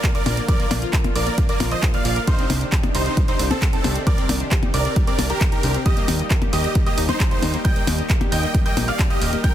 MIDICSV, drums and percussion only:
0, 0, Header, 1, 3, 480
1, 0, Start_track
1, 0, Tempo, 447761
1, 519, Time_signature, 4, 2, 24, 8
1, 10232, End_track
2, 0, Start_track
2, 0, Title_t, "Percussion blips"
2, 279, Note_on_c, 9, 63, 88
2, 386, Note_off_c, 9, 63, 0
2, 759, Note_on_c, 9, 63, 92
2, 867, Note_off_c, 9, 63, 0
2, 1119, Note_on_c, 9, 63, 86
2, 1226, Note_off_c, 9, 63, 0
2, 1717, Note_on_c, 9, 63, 86
2, 1824, Note_off_c, 9, 63, 0
2, 2679, Note_on_c, 9, 63, 82
2, 2786, Note_off_c, 9, 63, 0
2, 3039, Note_on_c, 9, 63, 83
2, 3146, Note_off_c, 9, 63, 0
2, 3760, Note_on_c, 9, 63, 77
2, 3867, Note_off_c, 9, 63, 0
2, 4120, Note_on_c, 9, 63, 79
2, 4227, Note_off_c, 9, 63, 0
2, 4601, Note_on_c, 9, 63, 79
2, 4708, Note_off_c, 9, 63, 0
2, 4960, Note_on_c, 9, 63, 75
2, 5067, Note_off_c, 9, 63, 0
2, 5559, Note_on_c, 9, 63, 79
2, 5667, Note_off_c, 9, 63, 0
2, 6519, Note_on_c, 9, 63, 80
2, 6626, Note_off_c, 9, 63, 0
2, 6879, Note_on_c, 9, 63, 80
2, 6986, Note_off_c, 9, 63, 0
2, 7599, Note_on_c, 9, 63, 79
2, 7706, Note_off_c, 9, 63, 0
2, 7959, Note_on_c, 9, 63, 77
2, 8067, Note_off_c, 9, 63, 0
2, 8440, Note_on_c, 9, 63, 79
2, 8547, Note_off_c, 9, 63, 0
2, 8800, Note_on_c, 9, 63, 81
2, 8907, Note_off_c, 9, 63, 0
2, 9401, Note_on_c, 9, 63, 79
2, 9508, Note_off_c, 9, 63, 0
2, 10232, End_track
3, 0, Start_track
3, 0, Title_t, "Drums"
3, 39, Note_on_c, 9, 36, 112
3, 39, Note_on_c, 9, 39, 118
3, 39, Note_on_c, 9, 42, 97
3, 146, Note_off_c, 9, 39, 0
3, 146, Note_off_c, 9, 42, 0
3, 147, Note_off_c, 9, 36, 0
3, 159, Note_on_c, 9, 42, 57
3, 266, Note_off_c, 9, 42, 0
3, 279, Note_on_c, 9, 46, 104
3, 386, Note_off_c, 9, 46, 0
3, 399, Note_on_c, 9, 42, 55
3, 506, Note_off_c, 9, 42, 0
3, 519, Note_on_c, 9, 36, 120
3, 520, Note_on_c, 9, 42, 96
3, 627, Note_off_c, 9, 36, 0
3, 627, Note_off_c, 9, 42, 0
3, 640, Note_on_c, 9, 42, 55
3, 747, Note_off_c, 9, 42, 0
3, 759, Note_on_c, 9, 46, 107
3, 867, Note_off_c, 9, 46, 0
3, 879, Note_on_c, 9, 42, 52
3, 987, Note_off_c, 9, 42, 0
3, 999, Note_on_c, 9, 36, 115
3, 999, Note_on_c, 9, 39, 126
3, 999, Note_on_c, 9, 42, 98
3, 1106, Note_off_c, 9, 36, 0
3, 1107, Note_off_c, 9, 39, 0
3, 1107, Note_off_c, 9, 42, 0
3, 1119, Note_on_c, 9, 42, 57
3, 1226, Note_off_c, 9, 42, 0
3, 1238, Note_on_c, 9, 46, 105
3, 1346, Note_off_c, 9, 46, 0
3, 1359, Note_on_c, 9, 42, 56
3, 1466, Note_off_c, 9, 42, 0
3, 1478, Note_on_c, 9, 42, 96
3, 1479, Note_on_c, 9, 36, 115
3, 1585, Note_off_c, 9, 42, 0
3, 1586, Note_off_c, 9, 36, 0
3, 1597, Note_on_c, 9, 42, 54
3, 1704, Note_off_c, 9, 42, 0
3, 1717, Note_on_c, 9, 46, 108
3, 1824, Note_off_c, 9, 46, 0
3, 1838, Note_on_c, 9, 42, 58
3, 1945, Note_off_c, 9, 42, 0
3, 1958, Note_on_c, 9, 39, 127
3, 1958, Note_on_c, 9, 42, 101
3, 1959, Note_on_c, 9, 36, 116
3, 2065, Note_off_c, 9, 39, 0
3, 2065, Note_off_c, 9, 42, 0
3, 2066, Note_off_c, 9, 36, 0
3, 2078, Note_on_c, 9, 42, 56
3, 2185, Note_off_c, 9, 42, 0
3, 2198, Note_on_c, 9, 46, 106
3, 2305, Note_off_c, 9, 46, 0
3, 2318, Note_on_c, 9, 42, 56
3, 2425, Note_off_c, 9, 42, 0
3, 2438, Note_on_c, 9, 42, 96
3, 2439, Note_on_c, 9, 36, 120
3, 2545, Note_off_c, 9, 42, 0
3, 2546, Note_off_c, 9, 36, 0
3, 2559, Note_on_c, 9, 42, 55
3, 2666, Note_off_c, 9, 42, 0
3, 2679, Note_on_c, 9, 46, 113
3, 2786, Note_off_c, 9, 46, 0
3, 2798, Note_on_c, 9, 42, 55
3, 2906, Note_off_c, 9, 42, 0
3, 2919, Note_on_c, 9, 36, 123
3, 2919, Note_on_c, 9, 39, 127
3, 2919, Note_on_c, 9, 42, 99
3, 3026, Note_off_c, 9, 39, 0
3, 3026, Note_off_c, 9, 42, 0
3, 3027, Note_off_c, 9, 36, 0
3, 3039, Note_on_c, 9, 42, 60
3, 3146, Note_off_c, 9, 42, 0
3, 3158, Note_on_c, 9, 46, 112
3, 3265, Note_off_c, 9, 46, 0
3, 3279, Note_on_c, 9, 42, 54
3, 3386, Note_off_c, 9, 42, 0
3, 3399, Note_on_c, 9, 42, 94
3, 3400, Note_on_c, 9, 36, 123
3, 3506, Note_off_c, 9, 42, 0
3, 3507, Note_off_c, 9, 36, 0
3, 3519, Note_on_c, 9, 42, 54
3, 3626, Note_off_c, 9, 42, 0
3, 3638, Note_on_c, 9, 46, 108
3, 3745, Note_off_c, 9, 46, 0
3, 3760, Note_on_c, 9, 42, 57
3, 3867, Note_off_c, 9, 42, 0
3, 3880, Note_on_c, 9, 36, 119
3, 3880, Note_on_c, 9, 39, 127
3, 3880, Note_on_c, 9, 42, 98
3, 3987, Note_off_c, 9, 36, 0
3, 3987, Note_off_c, 9, 39, 0
3, 3987, Note_off_c, 9, 42, 0
3, 4000, Note_on_c, 9, 42, 55
3, 4107, Note_off_c, 9, 42, 0
3, 4120, Note_on_c, 9, 46, 100
3, 4227, Note_off_c, 9, 46, 0
3, 4240, Note_on_c, 9, 42, 57
3, 4347, Note_off_c, 9, 42, 0
3, 4360, Note_on_c, 9, 36, 127
3, 4360, Note_on_c, 9, 42, 99
3, 4467, Note_off_c, 9, 36, 0
3, 4467, Note_off_c, 9, 42, 0
3, 4481, Note_on_c, 9, 42, 53
3, 4588, Note_off_c, 9, 42, 0
3, 4601, Note_on_c, 9, 46, 115
3, 4708, Note_off_c, 9, 46, 0
3, 4720, Note_on_c, 9, 42, 54
3, 4827, Note_off_c, 9, 42, 0
3, 4839, Note_on_c, 9, 39, 124
3, 4839, Note_on_c, 9, 42, 96
3, 4840, Note_on_c, 9, 36, 120
3, 4947, Note_off_c, 9, 36, 0
3, 4947, Note_off_c, 9, 39, 0
3, 4947, Note_off_c, 9, 42, 0
3, 4960, Note_on_c, 9, 42, 55
3, 5067, Note_off_c, 9, 42, 0
3, 5080, Note_on_c, 9, 46, 110
3, 5187, Note_off_c, 9, 46, 0
3, 5200, Note_on_c, 9, 42, 55
3, 5307, Note_off_c, 9, 42, 0
3, 5319, Note_on_c, 9, 42, 92
3, 5320, Note_on_c, 9, 36, 127
3, 5426, Note_off_c, 9, 42, 0
3, 5427, Note_off_c, 9, 36, 0
3, 5439, Note_on_c, 9, 42, 54
3, 5547, Note_off_c, 9, 42, 0
3, 5559, Note_on_c, 9, 46, 110
3, 5667, Note_off_c, 9, 46, 0
3, 5679, Note_on_c, 9, 42, 56
3, 5787, Note_off_c, 9, 42, 0
3, 5799, Note_on_c, 9, 39, 126
3, 5799, Note_on_c, 9, 42, 97
3, 5800, Note_on_c, 9, 36, 127
3, 5906, Note_off_c, 9, 39, 0
3, 5906, Note_off_c, 9, 42, 0
3, 5907, Note_off_c, 9, 36, 0
3, 5919, Note_on_c, 9, 42, 57
3, 6026, Note_off_c, 9, 42, 0
3, 6039, Note_on_c, 9, 46, 112
3, 6146, Note_off_c, 9, 46, 0
3, 6158, Note_on_c, 9, 42, 55
3, 6265, Note_off_c, 9, 42, 0
3, 6279, Note_on_c, 9, 42, 87
3, 6280, Note_on_c, 9, 36, 127
3, 6386, Note_off_c, 9, 42, 0
3, 6387, Note_off_c, 9, 36, 0
3, 6398, Note_on_c, 9, 42, 52
3, 6506, Note_off_c, 9, 42, 0
3, 6519, Note_on_c, 9, 46, 117
3, 6626, Note_off_c, 9, 46, 0
3, 6640, Note_on_c, 9, 42, 50
3, 6747, Note_off_c, 9, 42, 0
3, 6759, Note_on_c, 9, 39, 119
3, 6759, Note_on_c, 9, 42, 90
3, 6760, Note_on_c, 9, 36, 127
3, 6867, Note_off_c, 9, 36, 0
3, 6867, Note_off_c, 9, 39, 0
3, 6867, Note_off_c, 9, 42, 0
3, 6879, Note_on_c, 9, 42, 53
3, 6986, Note_off_c, 9, 42, 0
3, 6999, Note_on_c, 9, 46, 112
3, 7106, Note_off_c, 9, 46, 0
3, 7120, Note_on_c, 9, 42, 49
3, 7227, Note_off_c, 9, 42, 0
3, 7238, Note_on_c, 9, 42, 87
3, 7240, Note_on_c, 9, 36, 127
3, 7346, Note_off_c, 9, 42, 0
3, 7347, Note_off_c, 9, 36, 0
3, 7359, Note_on_c, 9, 42, 52
3, 7466, Note_off_c, 9, 42, 0
3, 7478, Note_on_c, 9, 46, 119
3, 7586, Note_off_c, 9, 46, 0
3, 7599, Note_on_c, 9, 42, 53
3, 7706, Note_off_c, 9, 42, 0
3, 7719, Note_on_c, 9, 39, 127
3, 7719, Note_on_c, 9, 42, 95
3, 7720, Note_on_c, 9, 36, 127
3, 7827, Note_off_c, 9, 36, 0
3, 7827, Note_off_c, 9, 39, 0
3, 7827, Note_off_c, 9, 42, 0
3, 7839, Note_on_c, 9, 42, 51
3, 7946, Note_off_c, 9, 42, 0
3, 7959, Note_on_c, 9, 46, 109
3, 8067, Note_off_c, 9, 46, 0
3, 8080, Note_on_c, 9, 42, 52
3, 8187, Note_off_c, 9, 42, 0
3, 8199, Note_on_c, 9, 42, 87
3, 8200, Note_on_c, 9, 36, 125
3, 8306, Note_off_c, 9, 42, 0
3, 8308, Note_off_c, 9, 36, 0
3, 8320, Note_on_c, 9, 42, 49
3, 8427, Note_off_c, 9, 42, 0
3, 8440, Note_on_c, 9, 46, 120
3, 8547, Note_off_c, 9, 46, 0
3, 8560, Note_on_c, 9, 42, 48
3, 8667, Note_off_c, 9, 42, 0
3, 8680, Note_on_c, 9, 36, 127
3, 8680, Note_on_c, 9, 39, 122
3, 8680, Note_on_c, 9, 42, 89
3, 8787, Note_off_c, 9, 39, 0
3, 8787, Note_off_c, 9, 42, 0
3, 8788, Note_off_c, 9, 36, 0
3, 8800, Note_on_c, 9, 42, 53
3, 8907, Note_off_c, 9, 42, 0
3, 8920, Note_on_c, 9, 46, 116
3, 9027, Note_off_c, 9, 46, 0
3, 9040, Note_on_c, 9, 42, 48
3, 9148, Note_off_c, 9, 42, 0
3, 9160, Note_on_c, 9, 36, 127
3, 9160, Note_on_c, 9, 42, 84
3, 9267, Note_off_c, 9, 36, 0
3, 9268, Note_off_c, 9, 42, 0
3, 9281, Note_on_c, 9, 42, 51
3, 9388, Note_off_c, 9, 42, 0
3, 9401, Note_on_c, 9, 46, 116
3, 9508, Note_off_c, 9, 46, 0
3, 9520, Note_on_c, 9, 42, 53
3, 9627, Note_off_c, 9, 42, 0
3, 9640, Note_on_c, 9, 36, 121
3, 9640, Note_on_c, 9, 39, 124
3, 9640, Note_on_c, 9, 42, 91
3, 9747, Note_off_c, 9, 36, 0
3, 9747, Note_off_c, 9, 39, 0
3, 9747, Note_off_c, 9, 42, 0
3, 9760, Note_on_c, 9, 42, 49
3, 9867, Note_off_c, 9, 42, 0
3, 9879, Note_on_c, 9, 46, 109
3, 9986, Note_off_c, 9, 46, 0
3, 10000, Note_on_c, 9, 42, 50
3, 10107, Note_off_c, 9, 42, 0
3, 10120, Note_on_c, 9, 36, 120
3, 10120, Note_on_c, 9, 42, 89
3, 10227, Note_off_c, 9, 36, 0
3, 10227, Note_off_c, 9, 42, 0
3, 10232, End_track
0, 0, End_of_file